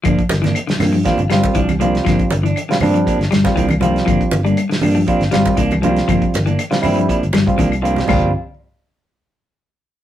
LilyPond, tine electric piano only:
\new Staff \with { instrumentName = "Tine electric piano" } { \time 4/4 \key g \dorian \tempo 4 = 120 r2 <g c' f'>16 r16 <g c' f'>8 r8 <g c' f'>8~ | <g c' f'>8 r8. <g c' f'>16 <g c' d'>8. r8 <g c' f'>8 r16 <g c' f'>8~ | <g c' f'>8. r4 r16 <g c' f'>16 r16 <g c' f'>8 r8 <g c' f'>8~ | <g c' f'>8 r8. <g c' f'>16 <g c' e'>8. r8 <g c' f'>8 r16 <g c' f'>8 |
<g c' f'>8 r2. r8 | }